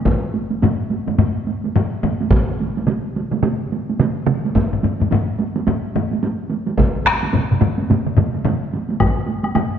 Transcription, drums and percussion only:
0.05 taiko, taiko low-mid, taiko high
0.34 taiko high
0.50 taiko high
0.62 taiko low-mid, taiko high
0.91 taiko high
1.07 taiko low-mid, taiko high
1.18 taiko low-mid, taiko high
1.47 taiko high
1.64 taiko high
1.76 taiko low-mid, taiko high
2.04 taiko low-mid, taiko high
2.21 taiko high
2.31 taiko, taiko mid, taiko high
2.60 taiko high
2.77 taiko high
2.87 taiko mid, taiko high
3.16 taiko high
3.31 taiko mid, taiko high
3.43 taiko mid, taiko high
3.72 taiko high
3.89 taiko high
4.00 taiko mid, taiko high
4.27 taiko mid, taiko high
4.45 taiko high
4.55 taiko, taiko low-mid, taiko high
4.73 taiko low-mid
4.83 taiko low-mid, taiko high
5.00 taiko low-mid, taiko high
5.11 taiko low-mid, taiko high
5.40 taiko high
5.56 taiko high
5.67 taiko low-mid, taiko high
5.95 taiko low-mid, taiko high
6.11 taiko high
6.23 taiko high
6.50 taiko high
6.66 taiko high
6.77 taiko, taiko low-mid, taiko mid, taiko high
7.05 taiko rim, taiko
7.23 taiko high
7.33 taiko low-mid, taiko mid, taiko high
7.51 taiko low-mid, taiko mid
7.61 taiko low-mid, taiko mid, taiko high
7.78 taiko high
7.90 taiko low-mid, taiko mid, taiko high
8.07 taiko low-mid, taiko mid
8.17 taiko low-mid, taiko mid, taiko high
8.34 taiko high
8.45 taiko low-mid, taiko mid, taiko high
8.73 taiko high
8.89 taiko high
9.00 taiko, taiko low-mid, taiko high, high woodblock
9.26 taiko high
9.44 taiko high, high woodblock
9.55 taiko low-mid, taiko high, high woodblock

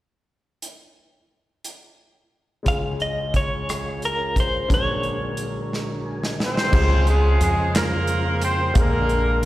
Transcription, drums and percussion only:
0.62 closed hi-hat
1.64 closed hi-hat
2.66 kick, closed hi-hat
3.00 closed hi-hat
3.34 kick, closed hi-hat
3.69 cross-stick, closed hi-hat
4.02 closed hi-hat
4.36 kick, closed hi-hat
4.70 kick, closed hi-hat
5.03 closed hi-hat
5.37 closed hi-hat
5.73 snare
6.24 snare
6.40 snare
6.57 snare
6.73 kick, crash
7.07 closed hi-hat
7.41 closed hi-hat
7.75 snare, clap, closed hi-hat
8.07 closed hi-hat
8.42 closed hi-hat
8.75 kick, closed hi-hat
9.09 closed hi-hat

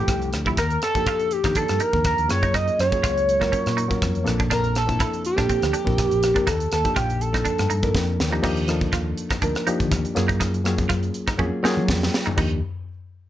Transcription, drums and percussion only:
0.08 kick, cross-stick, closed hi-hat
0.22 closed hi-hat
0.33 cross-stick, closed hi-hat
0.46 kick
0.57 kick, cross-stick, closed hi-hat
0.70 closed hi-hat
0.82 cross-stick, closed hi-hat
0.95 kick, closed hi-hat
1.06 kick, cross-stick, closed hi-hat
1.20 closed hi-hat
1.31 closed hi-hat
1.44 kick, cross-stick, closed hi-hat
1.55 kick, closed hi-hat
1.68 cross-stick, closed hi-hat
1.80 closed hi-hat
1.93 kick
2.04 kick, cross-stick, closed hi-hat
2.18 closed hi-hat
2.29 cross-stick, closed hi-hat
2.43 kick, closed hi-hat
2.54 kick, cross-stick, closed hi-hat
2.68 closed hi-hat
2.79 cross-stick, closed hi-hat
2.92 kick, closed hi-hat
3.04 kick, cross-stick, closed hi-hat
3.18 closed hi-hat
3.29 closed hi-hat
3.42 kick, cross-stick, closed hi-hat
3.53 kick, closed hi-hat
3.66 cross-stick, closed hi-hat
3.78 closed hi-hat
3.91 kick, closed hi-hat
4.02 kick, cross-stick, closed hi-hat
4.15 closed hi-hat
4.27 cross-stick, closed hi-hat
4.40 kick
4.51 kick, cross-stick, closed hi-hat
4.64 closed hi-hat
4.75 cross-stick, closed hi-hat
4.89 kick, closed hi-hat
5.00 kick, cross-stick, closed hi-hat
5.13 closed hi-hat
5.25 closed hi-hat
5.38 kick, cross-stick, closed hi-hat
5.49 kick, closed hi-hat
5.62 cross-stick, closed hi-hat
5.74 closed hi-hat
5.87 kick
5.98 kick, cross-stick, closed hi-hat
6.11 closed hi-hat
6.23 cross-stick, closed hi-hat
6.36 kick, closed hi-hat
6.47 kick, cross-stick, closed hi-hat
6.60 closed hi-hat
6.72 cross-stick, closed hi-hat
6.85 kick, closed hi-hat
6.96 kick, cross-stick, closed hi-hat
7.10 closed hi-hat
7.21 closed hi-hat
7.34 kick, cross-stick, closed hi-hat
7.45 kick, closed hi-hat
7.58 cross-stick, closed hi-hat
7.70 closed hi-hat
7.83 kick, closed hi-hat
7.95 kick, snare
8.20 snare
8.44 kick, cross-stick, crash
8.57 closed hi-hat
8.68 cross-stick, closed hi-hat
8.81 kick
8.93 kick, cross-stick, closed hi-hat
9.18 closed hi-hat
9.30 kick, cross-stick, closed hi-hat
9.42 kick, closed hi-hat
9.55 cross-stick, closed hi-hat
9.67 closed hi-hat
9.80 kick, closed hi-hat
9.91 kick, cross-stick, closed hi-hat
10.05 closed hi-hat
10.16 cross-stick, closed hi-hat
10.29 kick, closed hi-hat
10.41 kick, cross-stick, closed hi-hat
10.54 closed hi-hat
10.65 cross-stick, closed hi-hat
10.78 kick, closed hi-hat
10.89 kick, cross-stick, closed hi-hat
11.03 closed hi-hat
11.14 closed hi-hat
11.27 kick, cross-stick, closed hi-hat
11.39 kick
11.65 snare
11.88 kick, snare
12.03 snare
12.14 snare
12.27 floor tom
12.38 kick, crash

